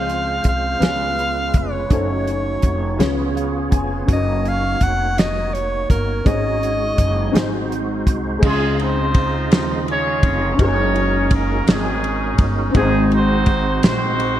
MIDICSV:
0, 0, Header, 1, 7, 480
1, 0, Start_track
1, 0, Key_signature, -5, "major"
1, 0, Tempo, 722892
1, 1266, Time_signature, 6, 3, 24, 8
1, 9560, End_track
2, 0, Start_track
2, 0, Title_t, "Alto saxophone"
2, 0, Program_c, 0, 65
2, 0, Note_on_c, 0, 77, 83
2, 307, Note_off_c, 0, 77, 0
2, 322, Note_on_c, 0, 77, 87
2, 1049, Note_on_c, 0, 73, 69
2, 1059, Note_off_c, 0, 77, 0
2, 1278, Note_off_c, 0, 73, 0
2, 1285, Note_on_c, 0, 73, 65
2, 2213, Note_off_c, 0, 73, 0
2, 2740, Note_on_c, 0, 75, 77
2, 2977, Note_on_c, 0, 77, 80
2, 2987, Note_off_c, 0, 75, 0
2, 3208, Note_on_c, 0, 78, 87
2, 3218, Note_off_c, 0, 77, 0
2, 3444, Note_on_c, 0, 75, 81
2, 3454, Note_off_c, 0, 78, 0
2, 3677, Note_on_c, 0, 73, 71
2, 3687, Note_off_c, 0, 75, 0
2, 3916, Note_off_c, 0, 73, 0
2, 3919, Note_on_c, 0, 70, 70
2, 4165, Note_on_c, 0, 75, 79
2, 4175, Note_off_c, 0, 70, 0
2, 5120, Note_off_c, 0, 75, 0
2, 9560, End_track
3, 0, Start_track
3, 0, Title_t, "Upright piano"
3, 0, Program_c, 1, 0
3, 0, Control_c, 1, 64, 127
3, 0, Note_on_c, 1, 53, 41
3, 0, Note_on_c, 1, 60, 49
3, 0, Note_on_c, 1, 61, 41
3, 0, Note_on_c, 1, 65, 41
3, 0, Note_on_c, 1, 68, 43
3, 0, Note_on_c, 1, 72, 53
3, 513, Note_off_c, 1, 53, 0
3, 521, Note_off_c, 1, 61, 0
3, 526, Note_off_c, 1, 65, 0
3, 526, Note_on_c, 1, 59, 47
3, 531, Note_on_c, 1, 61, 42
3, 533, Note_off_c, 1, 60, 0
3, 535, Note_off_c, 1, 68, 0
3, 536, Note_on_c, 1, 65, 42
3, 538, Note_on_c, 1, 49, 48
3, 545, Note_on_c, 1, 68, 43
3, 547, Note_off_c, 1, 72, 0
3, 550, Control_c, 1, 64, 0
3, 551, Note_on_c, 1, 71, 51
3, 646, Control_c, 1, 64, 127
3, 1238, Note_off_c, 1, 49, 0
3, 1242, Note_off_c, 1, 61, 0
3, 1252, Note_on_c, 1, 61, 45
3, 1258, Note_off_c, 1, 59, 0
3, 1259, Note_on_c, 1, 63, 42
3, 1263, Note_off_c, 1, 65, 0
3, 1265, Note_on_c, 1, 66, 44
3, 1268, Note_off_c, 1, 68, 0
3, 1271, Note_off_c, 1, 71, 0
3, 1274, Control_c, 1, 64, 0
3, 1274, Note_on_c, 1, 69, 46
3, 1278, Note_on_c, 1, 72, 44
3, 1315, Note_off_c, 1, 72, 0
3, 1323, Note_on_c, 1, 73, 47
3, 1409, Control_c, 1, 64, 127
3, 1966, Note_off_c, 1, 61, 0
3, 1976, Note_on_c, 1, 61, 57
3, 1982, Note_on_c, 1, 65, 53
3, 1986, Note_off_c, 1, 63, 0
3, 1986, Note_on_c, 1, 68, 54
3, 1989, Note_off_c, 1, 66, 0
3, 1989, Note_on_c, 1, 49, 58
3, 1990, Note_off_c, 1, 73, 0
3, 1994, Note_off_c, 1, 69, 0
3, 1995, Note_on_c, 1, 71, 53
3, 1997, Control_c, 1, 64, 0
3, 2000, Note_on_c, 1, 73, 70
3, 2105, Control_c, 1, 64, 127
3, 2227, Note_on_c, 1, 77, 52
3, 2453, Note_off_c, 1, 77, 0
3, 2465, Note_on_c, 1, 80, 59
3, 2670, Note_off_c, 1, 61, 0
3, 2680, Note_on_c, 1, 61, 48
3, 2685, Note_off_c, 1, 49, 0
3, 2692, Note_off_c, 1, 80, 0
3, 2695, Note_on_c, 1, 63, 46
3, 2708, Note_off_c, 1, 65, 0
3, 2708, Note_on_c, 1, 66, 43
3, 2711, Note_off_c, 1, 68, 0
3, 2715, Note_off_c, 1, 71, 0
3, 2718, Note_off_c, 1, 73, 0
3, 2719, Note_on_c, 1, 69, 35
3, 2722, Control_c, 1, 64, 0
3, 2734, Note_on_c, 1, 73, 52
3, 2759, Note_off_c, 1, 69, 0
3, 2763, Note_on_c, 1, 70, 43
3, 2824, Control_c, 1, 64, 127
3, 4112, Note_off_c, 1, 61, 0
3, 4120, Note_off_c, 1, 63, 0
3, 4126, Note_off_c, 1, 66, 0
3, 4139, Note_off_c, 1, 73, 0
3, 4143, Note_on_c, 1, 61, 50
3, 4148, Note_on_c, 1, 63, 44
3, 4152, Note_on_c, 1, 44, 47
3, 4153, Note_on_c, 1, 66, 46
3, 4154, Note_off_c, 1, 70, 0
3, 4161, Note_on_c, 1, 68, 45
3, 4165, Control_c, 1, 64, 0
3, 4166, Note_on_c, 1, 73, 54
3, 4281, Control_c, 1, 64, 127
3, 4847, Note_off_c, 1, 44, 0
3, 4851, Note_off_c, 1, 63, 0
3, 4855, Note_on_c, 1, 60, 58
3, 4858, Note_off_c, 1, 66, 0
3, 4861, Note_on_c, 1, 63, 54
3, 4865, Note_off_c, 1, 68, 0
3, 4868, Note_on_c, 1, 44, 59
3, 4868, Note_on_c, 1, 66, 53
3, 4869, Note_off_c, 1, 61, 0
3, 4874, Note_on_c, 1, 68, 54
3, 4880, Note_on_c, 1, 72, 66
3, 4881, Note_off_c, 1, 73, 0
3, 4882, Control_c, 1, 64, 0
3, 4990, Control_c, 1, 64, 127
3, 5565, Note_off_c, 1, 44, 0
3, 5569, Note_on_c, 1, 56, 54
3, 5573, Note_off_c, 1, 63, 0
3, 5583, Note_on_c, 1, 63, 51
3, 5585, Note_off_c, 1, 60, 0
3, 5591, Note_off_c, 1, 66, 0
3, 5594, Note_off_c, 1, 68, 0
3, 5595, Note_on_c, 1, 49, 57
3, 5597, Note_off_c, 1, 72, 0
3, 5598, Note_on_c, 1, 65, 51
3, 5604, Control_c, 1, 64, 0
3, 5609, Note_on_c, 1, 68, 50
3, 5621, Note_on_c, 1, 84, 65
3, 5708, Control_c, 1, 64, 127
3, 6287, Note_off_c, 1, 49, 0
3, 6992, Note_off_c, 1, 56, 0
3, 6998, Note_off_c, 1, 63, 0
3, 7004, Note_on_c, 1, 61, 58
3, 7006, Note_off_c, 1, 65, 0
3, 7012, Note_off_c, 1, 68, 0
3, 7017, Note_off_c, 1, 84, 0
3, 7018, Note_on_c, 1, 63, 56
3, 7032, Note_on_c, 1, 66, 56
3, 7039, Control_c, 1, 64, 0
3, 7045, Note_on_c, 1, 68, 56
3, 7058, Note_on_c, 1, 70, 63
3, 7135, Control_c, 1, 64, 127
3, 8425, Note_off_c, 1, 61, 0
3, 8432, Note_off_c, 1, 63, 0
3, 8437, Note_on_c, 1, 60, 59
3, 8439, Note_off_c, 1, 66, 0
3, 8445, Note_off_c, 1, 68, 0
3, 8450, Note_on_c, 1, 63, 55
3, 8452, Note_off_c, 1, 70, 0
3, 8465, Note_on_c, 1, 66, 57
3, 8466, Note_on_c, 1, 44, 60
3, 8474, Control_c, 1, 64, 0
3, 8478, Note_on_c, 1, 68, 52
3, 8491, Note_on_c, 1, 72, 71
3, 8581, Control_c, 1, 64, 127
3, 9156, Note_off_c, 1, 44, 0
3, 9560, Note_off_c, 1, 60, 0
3, 9560, Note_off_c, 1, 63, 0
3, 9560, Note_off_c, 1, 66, 0
3, 9560, Note_off_c, 1, 68, 0
3, 9560, Note_off_c, 1, 72, 0
3, 9560, End_track
4, 0, Start_track
4, 0, Title_t, "Horn section"
4, 0, Program_c, 2, 61
4, 5606, Note_on_c, 2, 65, 62
4, 5609, Note_on_c, 2, 60, 60
4, 5613, Note_on_c, 2, 56, 82
4, 5613, Note_on_c, 2, 68, 89
4, 5827, Note_off_c, 2, 56, 0
4, 5827, Note_off_c, 2, 68, 0
4, 5838, Note_off_c, 2, 65, 0
4, 5844, Note_on_c, 2, 63, 69
4, 5846, Note_on_c, 2, 65, 71
4, 5848, Note_off_c, 2, 60, 0
4, 5848, Note_on_c, 2, 60, 82
4, 5848, Note_on_c, 2, 72, 90
4, 6314, Note_off_c, 2, 60, 0
4, 6314, Note_off_c, 2, 72, 0
4, 6322, Note_on_c, 2, 60, 75
4, 6322, Note_on_c, 2, 72, 81
4, 6531, Note_off_c, 2, 63, 0
4, 6532, Note_off_c, 2, 65, 0
4, 6540, Note_off_c, 2, 60, 0
4, 6540, Note_off_c, 2, 72, 0
4, 6570, Note_on_c, 2, 65, 67
4, 6570, Note_on_c, 2, 68, 71
4, 6571, Note_on_c, 2, 61, 90
4, 6571, Note_on_c, 2, 73, 97
4, 7013, Note_off_c, 2, 61, 0
4, 7013, Note_off_c, 2, 65, 0
4, 7013, Note_off_c, 2, 68, 0
4, 7013, Note_off_c, 2, 73, 0
4, 7045, Note_on_c, 2, 61, 92
4, 7045, Note_on_c, 2, 68, 74
4, 7045, Note_on_c, 2, 73, 100
4, 7046, Note_on_c, 2, 70, 76
4, 7489, Note_off_c, 2, 61, 0
4, 7489, Note_off_c, 2, 73, 0
4, 7513, Note_off_c, 2, 70, 0
4, 7521, Note_on_c, 2, 58, 72
4, 7521, Note_on_c, 2, 70, 78
4, 7729, Note_off_c, 2, 68, 0
4, 7754, Note_off_c, 2, 58, 0
4, 7754, Note_off_c, 2, 70, 0
4, 7765, Note_on_c, 2, 56, 78
4, 7765, Note_on_c, 2, 68, 85
4, 7766, Note_on_c, 2, 63, 61
4, 7767, Note_on_c, 2, 61, 65
4, 8294, Note_off_c, 2, 56, 0
4, 8294, Note_off_c, 2, 68, 0
4, 8448, Note_off_c, 2, 61, 0
4, 8448, Note_off_c, 2, 63, 0
4, 8479, Note_on_c, 2, 56, 91
4, 8479, Note_on_c, 2, 63, 73
4, 8479, Note_on_c, 2, 68, 98
4, 8481, Note_on_c, 2, 60, 71
4, 8695, Note_off_c, 2, 56, 0
4, 8695, Note_off_c, 2, 68, 0
4, 8711, Note_off_c, 2, 63, 0
4, 8717, Note_off_c, 2, 60, 0
4, 8717, Note_on_c, 2, 60, 102
4, 8717, Note_on_c, 2, 72, 111
4, 8719, Note_on_c, 2, 63, 82
4, 8720, Note_on_c, 2, 66, 78
4, 9184, Note_off_c, 2, 60, 0
4, 9184, Note_off_c, 2, 72, 0
4, 9185, Note_off_c, 2, 66, 0
4, 9186, Note_off_c, 2, 63, 0
4, 9192, Note_on_c, 2, 60, 89
4, 9192, Note_on_c, 2, 72, 97
4, 9193, Note_on_c, 2, 66, 76
4, 9194, Note_on_c, 2, 63, 71
4, 9560, Note_off_c, 2, 60, 0
4, 9560, Note_off_c, 2, 63, 0
4, 9560, Note_off_c, 2, 66, 0
4, 9560, Note_off_c, 2, 72, 0
4, 9560, End_track
5, 0, Start_track
5, 0, Title_t, "Tonewheel organ"
5, 0, Program_c, 3, 16
5, 0, Note_on_c, 3, 56, 50
5, 0, Note_on_c, 3, 65, 47
5, 0, Note_on_c, 3, 72, 52
5, 533, Note_off_c, 3, 56, 0
5, 533, Note_off_c, 3, 65, 0
5, 540, Note_off_c, 3, 72, 0
5, 540, Note_on_c, 3, 61, 42
5, 541, Note_on_c, 3, 56, 51
5, 541, Note_on_c, 3, 65, 47
5, 543, Note_on_c, 3, 71, 53
5, 1265, Note_off_c, 3, 61, 0
5, 1266, Note_off_c, 3, 56, 0
5, 1266, Note_off_c, 3, 65, 0
5, 1267, Note_off_c, 3, 71, 0
5, 1268, Note_on_c, 3, 57, 48
5, 1269, Note_on_c, 3, 63, 48
5, 1269, Note_on_c, 3, 66, 44
5, 1272, Note_on_c, 3, 73, 50
5, 1977, Note_off_c, 3, 73, 0
5, 1985, Note_on_c, 3, 73, 64
5, 1986, Note_on_c, 3, 59, 65
5, 1987, Note_on_c, 3, 65, 55
5, 1988, Note_on_c, 3, 68, 59
5, 1991, Note_off_c, 3, 57, 0
5, 1991, Note_off_c, 3, 63, 0
5, 1991, Note_off_c, 3, 66, 0
5, 2700, Note_off_c, 3, 73, 0
5, 2708, Note_on_c, 3, 58, 50
5, 2708, Note_on_c, 3, 73, 55
5, 2709, Note_on_c, 3, 63, 51
5, 2709, Note_on_c, 3, 66, 49
5, 2711, Note_off_c, 3, 59, 0
5, 2711, Note_off_c, 3, 65, 0
5, 2712, Note_off_c, 3, 68, 0
5, 4127, Note_off_c, 3, 58, 0
5, 4127, Note_off_c, 3, 63, 0
5, 4127, Note_off_c, 3, 66, 0
5, 4127, Note_off_c, 3, 73, 0
5, 4156, Note_on_c, 3, 63, 44
5, 4156, Note_on_c, 3, 66, 44
5, 4157, Note_on_c, 3, 56, 48
5, 4158, Note_on_c, 3, 73, 59
5, 4864, Note_off_c, 3, 63, 0
5, 4865, Note_off_c, 3, 66, 0
5, 4867, Note_off_c, 3, 56, 0
5, 4872, Note_on_c, 3, 63, 59
5, 4873, Note_on_c, 3, 66, 57
5, 4874, Note_on_c, 3, 72, 66
5, 4875, Note_on_c, 3, 56, 61
5, 4877, Note_off_c, 3, 73, 0
5, 5583, Note_off_c, 3, 56, 0
5, 5584, Note_off_c, 3, 63, 0
5, 5588, Note_on_c, 3, 49, 55
5, 5589, Note_on_c, 3, 65, 54
5, 5591, Note_on_c, 3, 56, 59
5, 5592, Note_on_c, 3, 63, 54
5, 5592, Note_on_c, 3, 75, 65
5, 5593, Note_off_c, 3, 66, 0
5, 5594, Note_off_c, 3, 72, 0
5, 7001, Note_off_c, 3, 49, 0
5, 7001, Note_off_c, 3, 65, 0
5, 7003, Note_off_c, 3, 56, 0
5, 7003, Note_off_c, 3, 63, 0
5, 7003, Note_off_c, 3, 75, 0
5, 7033, Note_on_c, 3, 61, 58
5, 7033, Note_on_c, 3, 66, 57
5, 7034, Note_on_c, 3, 63, 62
5, 7034, Note_on_c, 3, 70, 64
5, 7035, Note_on_c, 3, 56, 64
5, 8439, Note_off_c, 3, 61, 0
5, 8440, Note_off_c, 3, 63, 0
5, 8440, Note_off_c, 3, 66, 0
5, 8440, Note_off_c, 3, 70, 0
5, 8441, Note_off_c, 3, 56, 0
5, 8465, Note_on_c, 3, 63, 61
5, 8466, Note_on_c, 3, 66, 61
5, 8467, Note_on_c, 3, 56, 67
5, 8467, Note_on_c, 3, 60, 61
5, 8469, Note_on_c, 3, 72, 74
5, 9560, Note_off_c, 3, 56, 0
5, 9560, Note_off_c, 3, 60, 0
5, 9560, Note_off_c, 3, 63, 0
5, 9560, Note_off_c, 3, 66, 0
5, 9560, Note_off_c, 3, 72, 0
5, 9560, End_track
6, 0, Start_track
6, 0, Title_t, "Upright bass"
6, 0, Program_c, 4, 32
6, 0, Note_on_c, 4, 37, 74
6, 274, Note_off_c, 4, 37, 0
6, 299, Note_on_c, 4, 36, 68
6, 522, Note_off_c, 4, 36, 0
6, 535, Note_on_c, 4, 37, 73
6, 995, Note_off_c, 4, 37, 0
6, 1025, Note_on_c, 4, 29, 63
6, 1247, Note_off_c, 4, 29, 0
6, 1266, Note_on_c, 4, 30, 76
6, 1722, Note_off_c, 4, 30, 0
6, 1749, Note_on_c, 4, 29, 75
6, 1970, Note_off_c, 4, 29, 0
6, 1989, Note_on_c, 4, 37, 73
6, 2445, Note_off_c, 4, 37, 0
6, 2471, Note_on_c, 4, 29, 67
6, 2693, Note_off_c, 4, 29, 0
6, 2712, Note_on_c, 4, 30, 83
6, 3167, Note_off_c, 4, 30, 0
6, 3193, Note_on_c, 4, 29, 73
6, 3888, Note_off_c, 4, 29, 0
6, 3918, Note_on_c, 4, 31, 69
6, 4138, Note_off_c, 4, 31, 0
6, 4157, Note_on_c, 4, 32, 76
6, 4610, Note_off_c, 4, 32, 0
6, 4635, Note_on_c, 4, 30, 81
6, 4856, Note_off_c, 4, 30, 0
6, 4876, Note_on_c, 4, 32, 74
6, 5329, Note_off_c, 4, 32, 0
6, 5357, Note_on_c, 4, 36, 69
6, 5577, Note_off_c, 4, 36, 0
6, 5596, Note_on_c, 4, 37, 95
6, 6314, Note_off_c, 4, 37, 0
6, 6314, Note_on_c, 4, 39, 81
6, 6766, Note_off_c, 4, 39, 0
6, 6794, Note_on_c, 4, 29, 90
6, 7013, Note_off_c, 4, 29, 0
6, 7031, Note_on_c, 4, 30, 95
6, 7722, Note_off_c, 4, 30, 0
6, 7746, Note_on_c, 4, 32, 80
6, 8198, Note_off_c, 4, 32, 0
6, 8225, Note_on_c, 4, 31, 83
6, 8445, Note_off_c, 4, 31, 0
6, 8464, Note_on_c, 4, 32, 110
6, 9155, Note_off_c, 4, 32, 0
6, 9183, Note_on_c, 4, 34, 83
6, 9560, Note_off_c, 4, 34, 0
6, 9560, End_track
7, 0, Start_track
7, 0, Title_t, "Drums"
7, 62, Note_on_c, 9, 42, 39
7, 128, Note_off_c, 9, 42, 0
7, 291, Note_on_c, 9, 42, 58
7, 299, Note_on_c, 9, 36, 63
7, 358, Note_off_c, 9, 42, 0
7, 366, Note_off_c, 9, 36, 0
7, 544, Note_on_c, 9, 42, 72
7, 552, Note_on_c, 9, 38, 75
7, 611, Note_off_c, 9, 42, 0
7, 618, Note_off_c, 9, 38, 0
7, 789, Note_on_c, 9, 42, 39
7, 855, Note_off_c, 9, 42, 0
7, 1021, Note_on_c, 9, 42, 59
7, 1024, Note_on_c, 9, 36, 76
7, 1087, Note_off_c, 9, 42, 0
7, 1091, Note_off_c, 9, 36, 0
7, 1264, Note_on_c, 9, 42, 56
7, 1266, Note_on_c, 9, 36, 84
7, 1331, Note_off_c, 9, 42, 0
7, 1332, Note_off_c, 9, 36, 0
7, 1510, Note_on_c, 9, 42, 39
7, 1576, Note_off_c, 9, 42, 0
7, 1742, Note_on_c, 9, 42, 57
7, 1748, Note_on_c, 9, 36, 61
7, 1809, Note_off_c, 9, 42, 0
7, 1814, Note_off_c, 9, 36, 0
7, 1992, Note_on_c, 9, 42, 62
7, 2000, Note_on_c, 9, 38, 82
7, 2059, Note_off_c, 9, 42, 0
7, 2066, Note_off_c, 9, 38, 0
7, 2238, Note_on_c, 9, 42, 43
7, 2305, Note_off_c, 9, 42, 0
7, 2470, Note_on_c, 9, 42, 59
7, 2471, Note_on_c, 9, 36, 70
7, 2536, Note_off_c, 9, 42, 0
7, 2538, Note_off_c, 9, 36, 0
7, 2712, Note_on_c, 9, 36, 79
7, 2713, Note_on_c, 9, 42, 61
7, 2779, Note_off_c, 9, 36, 0
7, 2779, Note_off_c, 9, 42, 0
7, 2957, Note_on_c, 9, 42, 37
7, 3023, Note_off_c, 9, 42, 0
7, 3191, Note_on_c, 9, 42, 56
7, 3194, Note_on_c, 9, 36, 65
7, 3258, Note_off_c, 9, 42, 0
7, 3261, Note_off_c, 9, 36, 0
7, 3441, Note_on_c, 9, 42, 69
7, 3448, Note_on_c, 9, 38, 80
7, 3507, Note_off_c, 9, 42, 0
7, 3515, Note_off_c, 9, 38, 0
7, 3683, Note_on_c, 9, 42, 41
7, 3750, Note_off_c, 9, 42, 0
7, 3917, Note_on_c, 9, 36, 73
7, 3920, Note_on_c, 9, 42, 57
7, 3983, Note_off_c, 9, 36, 0
7, 3986, Note_off_c, 9, 42, 0
7, 4156, Note_on_c, 9, 36, 90
7, 4158, Note_on_c, 9, 42, 55
7, 4223, Note_off_c, 9, 36, 0
7, 4224, Note_off_c, 9, 42, 0
7, 4403, Note_on_c, 9, 42, 40
7, 4469, Note_off_c, 9, 42, 0
7, 4635, Note_on_c, 9, 42, 61
7, 4637, Note_on_c, 9, 36, 61
7, 4702, Note_off_c, 9, 42, 0
7, 4704, Note_off_c, 9, 36, 0
7, 4883, Note_on_c, 9, 42, 70
7, 4891, Note_on_c, 9, 38, 87
7, 4949, Note_off_c, 9, 42, 0
7, 4957, Note_off_c, 9, 38, 0
7, 5127, Note_on_c, 9, 42, 44
7, 5193, Note_off_c, 9, 42, 0
7, 5357, Note_on_c, 9, 36, 68
7, 5359, Note_on_c, 9, 42, 64
7, 5423, Note_off_c, 9, 36, 0
7, 5426, Note_off_c, 9, 42, 0
7, 5596, Note_on_c, 9, 36, 109
7, 5596, Note_on_c, 9, 49, 88
7, 5662, Note_off_c, 9, 36, 0
7, 5662, Note_off_c, 9, 49, 0
7, 5839, Note_on_c, 9, 51, 41
7, 5906, Note_off_c, 9, 51, 0
7, 6071, Note_on_c, 9, 51, 61
7, 6075, Note_on_c, 9, 36, 75
7, 6138, Note_off_c, 9, 51, 0
7, 6141, Note_off_c, 9, 36, 0
7, 6318, Note_on_c, 9, 51, 67
7, 6326, Note_on_c, 9, 38, 106
7, 6384, Note_off_c, 9, 51, 0
7, 6392, Note_off_c, 9, 38, 0
7, 6561, Note_on_c, 9, 51, 41
7, 6627, Note_off_c, 9, 51, 0
7, 6793, Note_on_c, 9, 36, 88
7, 6793, Note_on_c, 9, 51, 59
7, 6859, Note_off_c, 9, 51, 0
7, 6860, Note_off_c, 9, 36, 0
7, 7032, Note_on_c, 9, 36, 94
7, 7033, Note_on_c, 9, 51, 57
7, 7099, Note_off_c, 9, 36, 0
7, 7099, Note_off_c, 9, 51, 0
7, 7274, Note_on_c, 9, 51, 37
7, 7341, Note_off_c, 9, 51, 0
7, 7507, Note_on_c, 9, 51, 61
7, 7510, Note_on_c, 9, 36, 76
7, 7574, Note_off_c, 9, 51, 0
7, 7576, Note_off_c, 9, 36, 0
7, 7752, Note_on_c, 9, 51, 68
7, 7760, Note_on_c, 9, 38, 101
7, 7818, Note_off_c, 9, 51, 0
7, 7826, Note_off_c, 9, 38, 0
7, 7994, Note_on_c, 9, 51, 44
7, 8060, Note_off_c, 9, 51, 0
7, 8223, Note_on_c, 9, 51, 63
7, 8225, Note_on_c, 9, 36, 89
7, 8289, Note_off_c, 9, 51, 0
7, 8292, Note_off_c, 9, 36, 0
7, 8463, Note_on_c, 9, 51, 63
7, 8465, Note_on_c, 9, 36, 100
7, 8529, Note_off_c, 9, 51, 0
7, 8531, Note_off_c, 9, 36, 0
7, 8709, Note_on_c, 9, 51, 41
7, 8775, Note_off_c, 9, 51, 0
7, 8937, Note_on_c, 9, 51, 58
7, 8943, Note_on_c, 9, 36, 81
7, 9004, Note_off_c, 9, 51, 0
7, 9009, Note_off_c, 9, 36, 0
7, 9183, Note_on_c, 9, 51, 72
7, 9190, Note_on_c, 9, 38, 99
7, 9249, Note_off_c, 9, 51, 0
7, 9257, Note_off_c, 9, 38, 0
7, 9427, Note_on_c, 9, 51, 45
7, 9493, Note_off_c, 9, 51, 0
7, 9560, End_track
0, 0, End_of_file